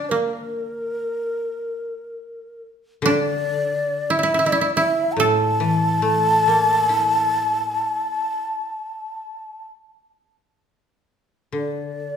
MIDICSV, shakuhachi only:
0, 0, Header, 1, 2, 480
1, 0, Start_track
1, 0, Tempo, 865801
1, 44, Time_signature, 4, 2, 24, 8
1, 1005, Tempo, 847458
1, 3405, Tempo, 872093
1, 4365, Tempo, 910470
1, 4845, Tempo, 963082
1, 5805, Tempo, 914634
1, 6611, End_track
2, 0, Start_track
2, 0, Title_t, "Shakuhachi"
2, 0, Program_c, 0, 77
2, 0, Note_on_c, 0, 74, 88
2, 53, Note_on_c, 0, 70, 76
2, 61, Note_off_c, 0, 74, 0
2, 1482, Note_off_c, 0, 70, 0
2, 1708, Note_on_c, 0, 74, 107
2, 2306, Note_on_c, 0, 76, 113
2, 2315, Note_off_c, 0, 74, 0
2, 2544, Note_off_c, 0, 76, 0
2, 2544, Note_on_c, 0, 74, 113
2, 2667, Note_off_c, 0, 74, 0
2, 2671, Note_on_c, 0, 76, 106
2, 2881, Note_on_c, 0, 82, 80
2, 2889, Note_off_c, 0, 76, 0
2, 2919, Note_on_c, 0, 81, 127
2, 2928, Note_off_c, 0, 82, 0
2, 5329, Note_off_c, 0, 81, 0
2, 6302, Note_on_c, 0, 74, 73
2, 6611, Note_off_c, 0, 74, 0
2, 6611, End_track
0, 0, End_of_file